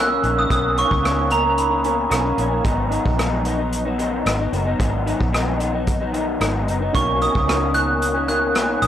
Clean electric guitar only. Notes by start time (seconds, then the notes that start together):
0.10 D#3 A#3 C#4
0.22 B2 D#3 A#3 C#4
0.36 D#3 A#3 C#4
0.49 B2 D#3 A#3 C#4
0.77 B2 D#3 A#3 C#4
1.03 B2 D#3 A#3 C#4
1.30 B2 D#3 A#3 C#4
1.43 D#3 A#3 C#4
1.69 D#3 A#3 C#4
1.84 B2 D#3 A#3 C#4
2.10 B2 D#3 A#3 C#4
2.23 D#3 A#3 C#4
2.37 B2 D#3 A#3 C#4
2.50 D#3 A#3 C#4
2.64 G#2 D#3 F#3 B3 D#4
2.91 D#3 F#3 B3 D#4
3.17 G#2 D#3 F#3 B3 D#4
3.44 D#3 F#3 B3 D#4
3.58 F#3 B3 D#4
3.85 F#3 B3 D#4
3.98 D#3 F#3 B3 D#4
4.25 G#2 D#3 F#3 B3 D#4
4.39 F#3 B3 D#4
4.52 D#3 F#3 B3 D#4
4.66 F#3 B3 D#4
4.79 G#2 D#3 F#3 B3 D#4
5.06 D#3 F#3 B3 D#4
5.33 G#2 D#3 F#3 B3 D#4
5.60 D#3 F#3 B3 D#4
5.73 F#3 B3 D#4
6.00 F#3 B3 D#4
6.12 D#3 F#3 B3 D#4
6.40 G#2 D#3 F#3 B3 D#4
6.67 D#3 F#3 B3 D#4
6.80 F#3 B3 D#4
6.94 B2 D#3 A#3 C#4
7.21 B2 D#3 A#3 C#4
7.48 B2 D#3 A#3 C#4
7.74 B2 D#3 A#3 C#4
8.14 D#3 A#3 C#4
8.28 B2 D#3 A#3 C#4
8.55 B2 D#3 A#3 C#4
8.81 B2 D#3 A#3 C#4